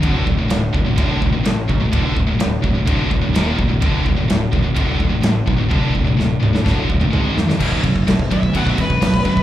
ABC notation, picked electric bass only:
X:1
M:4/4
L:1/8
Q:1/4=127
K:D
V:1 name="Picked electric bass" clef=bass
D,,, D,,, D,,, D,,, D,,, D,,, A,,, B,,, | D,,, D,,, D,,, D,,, D,,, D,,, ^D,,, C,,, | D,,, D,,, D,,, D,,, D,,, D,,, A,,, B,,, | D,,, D,,, D,,, D,,, D,,, D,,, ^G,,, ^E,, |
B,,,, F,,, B,,,, B,,,, B,,,, E,,, B,,,, B,,,, |]